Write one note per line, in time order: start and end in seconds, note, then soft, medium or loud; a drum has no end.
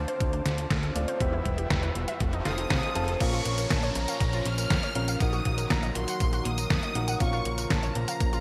0.00 0.92 D3 medium
0.00 0.92 C4 medium
0.00 0.93 F4 medium
0.00 0.93 A4 medium
0.00 1.18 C5 medium
0.00 0.93 D5 medium
0.00 1.18 F5 medium
0.00 1.18 A5 medium
0.00 1.16 D6 medium
0.00 riser medium
0.08 0.20 C5 loud
0.08 closed hi-hat medium
0.20 0.42 D2 medium
0.20 0.29 A3 medium
0.20 kick loud
0.20 closed hi-hat medium
0.33 0.45 D4 loud
0.33 closed hi-hat soft
0.45 0.67 D2 medium
0.45 0.54 A3 medium
0.45 snare medium
0.45 closed hi-hat medium
0.58 0.67 F4 medium
0.58 closed hi-hat medium
0.70 0.92 D2 loud
0.70 0.76 A3 medium
0.70 kick loud
0.70 snare loud
0.70 closed hi-hat medium
0.83 0.92 A4 loud
0.83 closed hi-hat soft
0.95 1.06 D1 loud
0.95 1.07 A3 medium
0.95 1.18 C4 medium
0.95 1.18 F4 medium
0.95 1.18 A4 medium
0.95 1.18 D5 medium
0.95 closed hi-hat medium
1.08 1.20 C5 loud
1.08 closed hi-hat medium
1.20 1.42 E1 loud
1.20 2.19 E3 medium
1.20 1.29 G3 medium
1.20 2.19 B3 medium
1.20 2.19 E4 medium
1.20 2.19 G4 medium
1.20 2.20 B4 medium
1.20 2.20 E5 medium
1.20 2.19 E5 medium
1.20 2.20 G5 medium
1.20 2.19 E6 medium
1.20 kick loud
1.20 closed hi-hat medium
1.33 1.45 E4 loud
1.45 1.67 E1 medium
1.45 1.54 G3 medium
1.45 kick medium
1.45 closed hi-hat medium
1.58 1.67 G4 medium
1.58 closed hi-hat soft
1.70 1.92 E1 loud
1.70 1.76 G3 medium
1.70 kick loud
1.70 snare loud
1.70 closed hi-hat medium
1.83 1.92 B4 loud
1.83 closed hi-hat soft
1.95 2.06 E1 medium
1.95 2.07 G3 medium
1.95 closed hi-hat medium
2.08 2.20 E5 loud
2.08 closed hi-hat soft
2.20 2.42 F1 medium
2.20 2.29 A3 medium
2.20 3.19 C5 medium
2.20 3.19 F5 medium
2.20 3.19 A5 medium
2.20 3.19 D#6 medium
2.20 kick loud
2.20 closed hi-hat medium
2.33 2.44 D#4 loud
2.33 closed hi-hat soft
2.45 2.67 F1 medium
2.45 2.93 F3 medium
2.45 2.93 C4 medium
2.45 2.54 D#4 medium
2.45 2.93 F4 medium
2.45 2.93 A4 medium
2.45 2.92 F5 loud
2.45 3.17 D#6 loud
2.45 snare medium
2.45 closed hi-hat medium
2.58 2.67 D#4 medium
2.58 closed hi-hat medium
2.70 2.81 C2 medium
2.70 2.76 C4 medium
2.70 kick loud
2.70 snare loud
2.70 closed hi-hat medium
2.83 2.88 D#4 loud
2.83 closed hi-hat soft
2.95 3.17 F1 loud
2.95 3.17 C4 loud
2.95 3.18 F4 medium
2.95 3.17 A4 medium
2.95 3.04 A4 medium
2.95 3.17 A5 loud
2.95 closed hi-hat medium
3.08 3.13 A4 loud
3.08 closed hi-hat medium
3.20 3.42 A#1 loud
3.20 4.93 A#2 medium
3.20 5.18 F3 medium
3.20 8.40 A#3 medium
3.20 3.29 A#3 medium
3.20 5.18 C#4 medium
3.20 4.92 C#4 medium
3.20 4.93 F4 medium
3.20 8.40 A#4 medium
3.20 4.92 A#4 medium
3.20 5.18 C#5 medium
3.20 4.92 F5 medium
3.20 3.67 C#6 loud
3.20 kick loud
3.20 closed hi-hat medium
3.20 crash loud
3.20 tambourine medium
3.20 downlifter medium
3.33 3.45 F4 loud
3.33 tambourine soft
3.45 3.67 A#1 medium
3.45 3.54 A#3 medium
3.45 closed hi-hat medium
3.58 3.67 A#4 medium
3.58 closed hi-hat medium
3.58 tambourine medium
3.70 3.92 A#1 loud
3.70 3.76 A#3 medium
3.70 3.96 A5 loud
3.70 kick loud
3.70 snare loud
3.70 closed hi-hat medium
3.70 tambourine medium
3.83 3.92 C#5 loud
3.83 closed hi-hat soft
3.83 tambourine soft
3.95 4.06 A#1 medium
3.95 4.07 A#3 medium
3.95 4.46 A#5 loud
3.95 closed hi-hat medium
4.08 4.20 F5 loud
4.08 closed hi-hat medium
4.08 tambourine medium
4.20 4.42 A#1 medium
4.20 4.29 A#3 medium
4.20 kick loud
4.20 closed hi-hat medium
4.20 tambourine medium
4.33 4.45 F4 loud
4.33 closed hi-hat soft
4.33 tambourine soft
4.45 4.67 A#1 medium
4.45 4.54 A#3 medium
4.45 5.20 F6 loud
4.45 closed hi-hat medium
4.58 4.67 A#4 medium
4.58 closed hi-hat medium
4.58 tambourine medium
4.70 4.81 F2 medium
4.70 4.76 A#3 medium
4.70 kick loud
4.70 snare loud
4.70 closed hi-hat medium
4.70 tambourine medium
4.83 4.92 C#5 loud
4.83 closed hi-hat soft
4.83 tambourine soft
4.95 5.17 A#1 loud
4.95 5.07 A#3 medium
4.95 5.17 C#4 medium
4.95 5.17 F4 medium
4.95 5.17 A#4 medium
4.95 5.17 F5 medium
4.95 closed hi-hat medium
5.08 5.20 F5 loud
5.08 closed hi-hat medium
5.08 tambourine medium
5.20 5.42 A#1 loud
5.20 7.18 D#3 medium
5.20 7.19 F#3 medium
5.20 6.92 A#3 medium
5.20 5.29 A#3 medium
5.20 6.92 D#4 medium
5.20 6.92 F#4 medium
5.20 7.19 F#4 medium
5.20 6.92 A#4 medium
5.20 6.92 F#5 medium
5.20 5.67 D#6 loud
5.20 kick loud
5.20 closed hi-hat medium
5.20 tambourine medium
5.33 5.45 F#4 loud
5.33 tambourine soft
5.45 5.67 A#1 medium
5.45 5.54 A#3 medium
5.45 kick medium
5.45 closed hi-hat medium
5.58 5.67 A#4 medium
5.58 closed hi-hat medium
5.58 tambourine medium
5.70 5.92 A#1 loud
5.70 5.76 A#3 medium
5.70 5.95 A#5 loud
5.70 kick loud
5.70 snare loud
5.70 closed hi-hat medium
5.70 tambourine soft
5.83 5.92 D#5 loud
5.83 closed hi-hat soft
5.83 tambourine soft
5.95 6.06 A#1 medium
5.95 6.07 A#3 medium
5.95 6.46 C6 loud
5.95 closed hi-hat medium
6.08 6.20 F#5 loud
6.08 closed hi-hat medium
6.08 tambourine medium
6.20 6.42 A#1 medium
6.20 6.29 A#3 medium
6.20 kick loud
6.20 closed hi-hat medium
6.20 tambourine soft
6.33 6.45 F#4 loud
6.33 closed hi-hat soft
6.33 tambourine soft
6.45 6.67 A#1 medium
6.45 6.54 A#3 medium
6.45 7.21 D#6 loud
6.45 closed hi-hat medium
6.58 6.67 A#4 medium
6.58 closed hi-hat medium
6.58 tambourine medium
6.70 6.81 F2 medium
6.70 6.76 A#3 medium
6.70 kick loud
6.70 snare loud
6.70 closed hi-hat medium
6.70 tambourine soft
6.83 6.92 D#5 loud
6.83 closed hi-hat soft
6.83 tambourine soft
6.95 7.17 A#1 medium
6.95 7.07 A#3 medium
6.95 7.17 D#4 medium
6.95 7.17 F#4 medium
6.95 7.17 A#4 medium
6.95 7.17 F#5 medium
6.95 closed hi-hat medium
7.08 7.20 F#5 loud
7.08 closed hi-hat medium
7.08 tambourine medium
7.20 7.42 A#1 loud
7.20 8.40 A#2 medium
7.20 8.40 C#3 medium
7.20 8.40 F3 medium
7.20 7.29 A#3 medium
7.20 8.40 C#4 medium
7.20 8.40 F4 medium
7.20 8.40 A#4 medium
7.20 8.40 F5 medium
7.20 7.67 C#6 loud
7.20 kick loud
7.20 closed hi-hat medium
7.20 tambourine medium
7.33 7.45 F4 loud
7.33 tambourine soft
7.45 7.67 A#1 medium
7.45 7.54 A#3 medium
7.45 closed hi-hat medium
7.58 7.67 A#4 medium
7.58 closed hi-hat medium
7.58 tambourine medium
7.70 7.92 A#1 loud
7.70 7.76 A#3 medium
7.70 7.94 A5 loud
7.70 kick loud
7.70 snare loud
7.70 closed hi-hat medium
7.70 tambourine soft
7.83 7.92 C#5 loud
7.83 closed hi-hat soft
7.83 tambourine soft
7.95 8.06 A#1 medium
7.95 8.07 A#3 medium
7.95 8.40 A#5 loud
7.95 closed hi-hat medium
8.08 8.20 F5 loud
8.08 closed hi-hat medium
8.08 tambourine medium
8.20 8.40 A#1 medium
8.20 8.29 A#3 medium
8.20 kick loud
8.20 closed hi-hat medium
8.20 tambourine soft
8.33 8.40 F4 loud
8.33 closed hi-hat soft
8.33 tambourine soft